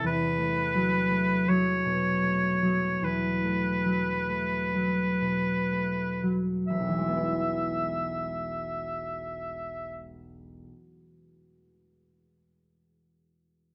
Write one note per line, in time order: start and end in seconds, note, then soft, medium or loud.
0.04 3.01 E2 soft
0.04 1.50 B4 medium
0.38 1.10 A3 soft
0.75 1.48 F#3 soft
1.11 2.22 A3 soft
1.49 2.61 F#3 soft
1.49 3.06 C#5 medium
1.85 5.20 B2 soft
2.23 3.43 A3 soft
2.63 3.84 F#3 soft
3.02 6.76 E2 soft
3.02 6.50 B4 soft
3.45 4.28 A3 soft
3.85 4.73 F#3 soft
4.29 5.71 A3 soft
4.75 6.22 F#3 soft
5.21 6.76 B2 soft
5.72 6.76 A3 soft
6.23 6.76 F#3 soft
6.67 10.60 E1 soft
6.67 10.07 E5 soft
6.80 10.70 B1 soft
6.89 10.79 E3 soft
6.98 10.42 G#3 soft
7.08 10.47 B3 soft
7.17 10.56 E4 soft